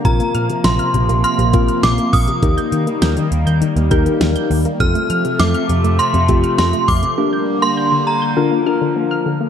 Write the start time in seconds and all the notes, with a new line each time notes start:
Already playing: A#3
0.05 A#1 C3 F3 C4 F4 A#4 A#5, kick, closed hi-hat
0.20 A#3, closed hi-hat
0.35 A#2 F6, closed hi-hat
0.50 C3, closed hi-hat
0.64 A#1 A#3 C6, snare, closed hi-hat
0.79 F6, closed hi-hat
0.94 A#1 C3, closed hi-hat
1.09 A#1 A#3, closed hi-hat
1.24 C6 F6, closed hi-hat
1.39 A#1 C3, closed hi-hat
1.53 A#1 A#3 C4 F4 A#4, kick, closed hi-hat
1.68 F6, closed hi-hat
1.83 A#1 C3 D6, snare, closed hi-hat
1.98 A#3, closed hi-hat
2.13 A#1 D#6 F6, kick, open hi-hat
2.28 C3, closed hi-hat
2.43 D#2 D#3 G3 A#3 D#4 G4 A#4, kick, closed hi-hat
2.57 G6, closed hi-hat
2.72 D#3, closed hi-hat
2.87 A#3, closed hi-hat
3.02 D#2 G6, snare, closed hi-hat
3.17 D#3, closed hi-hat
3.32 D#2, closed hi-hat
3.47 D#2 G6, closed hi-hat
3.61 D#3, closed hi-hat
3.76 D#2 A#3, closed hi-hat
3.91 D#2 D#4 G4 A#4 G6, kick, closed hi-hat
4.06 D#3, closed hi-hat
4.21 D#2 A#3, snare, closed hi-hat
4.36 G6, closed hi-hat
4.51 D#2 D#3, open hi-hat
4.65 A#3, closed hi-hat
4.80 F2 C3 F3 A3 C4 F4 A4 F6, kick, closed hi-hat
4.95 A3, closed hi-hat
5.10 F3 F6, closed hi-hat
5.25 C3, closed hi-hat
5.39 F2 A3 D6, snare, closed hi-hat
5.54 F6, closed hi-hat
5.69 F2 C3, closed hi-hat
5.84 F2 A3, closed hi-hat
5.99 C6 F6, closed hi-hat
6.14 F2 C3, closed hi-hat
6.28 F2 A3 C4 F4 G4, kick, closed hi-hat
6.44 F6, closed hi-hat
6.58 F2 C3 C6, snare, closed hi-hat
6.73 A3, closed hi-hat
6.88 F2 D6 F6, kick, open hi-hat
7.03 C3, closed hi-hat
7.18 D3 G3 A#3 D4 G4 A#4
7.33 G6
7.62 A#3 C6
7.77 G6
7.92 D3
8.07 A#5
8.22 G6
8.37 D3 F3 D4 F4 A#4
8.52 A#3
8.66 D4 F4 A#4 F6
8.81 D3
8.96 A#3
9.11 F6
9.26 D3
9.41 A#3